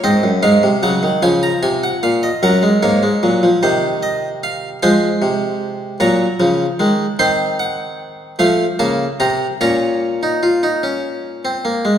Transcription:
<<
  \new Staff \with { instrumentName = "Harpsichord" } { \time 6/8 \key fis \major \tempo 4. = 50 << { dis''8 eis''8 fis''8 gis''16 ais''16 gis''16 fis''16 eis''16 dis''16 | fis''8 cis''4 c''8 ees''8 eis''8 | aes''4. ais''4. | \key bes \minor c'''8 ges''4 f''8 a''8 bes''8 |
bes''2~ bes''8 r8 | } \\ { r2. | ais'2. | c''4. cis''4. | c''2. |
des''2~ des''8 r8 | } >> }
  \new Staff \with { instrumentName = "Harpsichord" } { \clef bass \time 6/8 \key fis \major << { bis8 gis8 fis8 eis4. | fis16 gis16 ais16 gis16 fis16 eis16 ees4. | aes4. fis8 eis8 gis8 | \key bes \minor c'4. a8 bes8 c'8 |
des'8. ees'16 f'16 ees'16 des'8. c'16 bes16 aes16 | } \\ { gis,16 fis,16 gis,16 bis,16 cis16 dis16 cis8 bis,8 ais,8 | fis,8 gis,8 ais,8 c4. | f8 c4 ais,8 cis8 dis8 | ees4. f8 des8 c8 |
bes,2~ bes,8 r8 | } >> }
>>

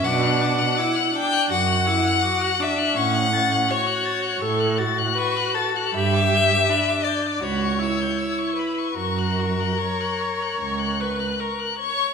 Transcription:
<<
  \new Staff \with { instrumentName = "Violin" } { \time 4/4 \key fis \phrygian \tempo 4 = 81 d'''16 fis'''16 d'''16 fis'''16 d'''16 fis'''16 d'''16 fis'''16 d'''16 fis'''16 d'''16 fis'''16 d'''16 fis'''16 d'''16 fis'''16 | cis'''16 fis'''16 a'''16 fis'''16 cis'''16 fis'''16 a'''16 fis'''16 cis'''16 fis'''16 a'''16 fis'''16 cis'''16 fis'''16 a'''16 fis'''16 | b''16 d'''16 g'''16 d'''16 b''16 d'''16 g'''16 d'''16 b''16 cis'''16 e'''16 g'''16 e'''16 cis'''16 b''16 cis'''16 | cis'''16 fis'''16 cis'''16 fis'''16 cis'''16 fis'''16 cis'''16 fis'''16 cis'''16 fis'''16 cis'''16 fis'''16 cis'''16 fis'''16 cis'''8 | }
  \new Staff \with { instrumentName = "Violin" } { \time 4/4 \key fis \phrygian fis''4. g''8 fis''4. e''8 | fis''4 cis''4. r8 b'8 a'8 | e''4. d''8 cis''4. b'8 | ais'2. r8 cis''8 | }
  \new Staff \with { instrumentName = "Viola" } { \time 4/4 \key fis \phrygian d'4 e'8 d'8 fis'8 e'8 fis'8 d'8 | cis'8 cis'8 fis'4 a'8 fis'4. | g'4 d'4 fis'8 e'4. | fis'4 cis''4. b'8 ais'8 cis''8 | }
  \new Staff \with { instrumentName = "Cello" } { \clef bass \time 4/4 \key fis \phrygian b,4 r4 fis,4 r4 | a,4 r4 a,4 r4 | g,4 r4 cis,4 r4 | fis,4 r4 cis,4 r4 | }
>>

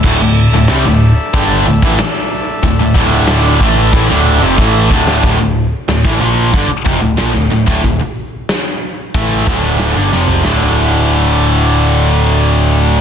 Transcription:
<<
  \new Staff \with { instrumentName = "Tonewheel organ" } { \time 4/4 \key d \minor \tempo 4 = 92 <d' a' e''>1~ | <d' a' e''>1 | r1 | r1 |
r1 | }
  \new Staff \with { instrumentName = "Distorted electric guitar" } { \clef bass \time 4/4 \key d \minor <d, a,>16 <d, a,>8 <d, a,>16 <c g>16 <d, a,>8 r16 <g, d g>8 <d, a,>16 <a, e>16 r4 | <d, a,>16 <d, a,>16 <d, a, d>4 <a, e a>8 <a, e>16 <d, a, d>8 <f, c>16 <a, e a>8 <d, a, d>8 | <d, a,>16 <d, a,>8 r16 <d, a,>16 <a, e>16 <bes, f bes>8 <g, d>16 r16 <f, c>16 <d, a,>16 <bes, f>16 <d, a,>16 <d, a,>16 <d, a,>16 | <d, a,>16 r4. r16 <a, e a>8 <d, a, d>8. <g, d>16 <f, c f>8 |
<d, a, d>1 | }
  \new Staff \with { instrumentName = "Distorted electric guitar" } { \clef bass \time 4/4 \key d \minor <d, a,>16 <d, a,>8 <d, a,>16 <c g>16 <d, a,>8 r16 <g, d g>8 <d, a,>16 <a, e>16 r4 | <d, a,>16 <d, a,>16 <d, a, d>4 <a, e a>8 <a, e>16 <d, a, d>8 <f, c>16 <a, e a>8 <d, a, d>8 | <d, a,>16 <d, a,>8 r16 <d, a,>16 <a, e>16 <bes, f bes>8 <g, d>16 r16 <f, c>16 <d, a,>16 <bes, f>16 <d, a,>16 <d, a,>16 <d, a,>16 | <d, a,>16 r4. r16 <a, e a>8 <d, a, d>8. <g, d>16 <f, c f>8 |
<d, a, d>1 | }
  \new Staff \with { instrumentName = "Picked electric bass" } { \clef bass \time 4/4 \key d \minor d,,16 d,,8 d,,16 c,16 d,,8 r16 g,,8 d,,16 a,,16 r4 | d,,16 d,,16 d,,4 a,,8 a,,16 d,,8 f,,16 a,,8 d,,8 | d,,16 d,,8 r16 d,,16 a,,16 bes,,8 g,,16 r16 f,,16 d,,16 bes,,16 d,,16 d,,16 d,,16 | d,,16 r4. r16 a,,8 d,,8. g,,16 f,,8 |
d,,1 | }
  \new DrumStaff \with { instrumentName = "Drums" } \drummode { \time 4/4 <cymc bd>4 <hho sn>4 <hho bd>8. bd16 <hho sn>4 | <hho bd>8 bd8 <hho sn>8 bd8 <hho bd>4 bd8 bd16 sn16 | <hho bd>4 <hho sn>16 bd8. <hho bd>8 bd8 <hho sn>8. bd16 | <hho bd>4 <hho sn>4 <hho bd>8 bd8 <hho sn>8 sn16 tomfh16 |
sn4 r4 r4 r4 | }
>>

